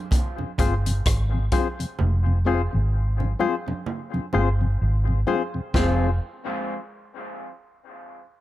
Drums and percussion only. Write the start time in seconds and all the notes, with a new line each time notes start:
0.11 kick, closed hi-hat, low conga
0.38 high conga
0.58 kick, closed hi-hat, low conga
0.86 closed hi-hat
1.06 kick, cross-stick, closed hi-hat
1.52 kick, closed hi-hat, high conga
1.80 closed hi-hat
1.99 low conga
3.20 high conga
3.40 high conga
3.68 high conga
3.86 low conga
4.14 high conga
4.33 low conga
5.27 high conga
5.74 kick, snare, low conga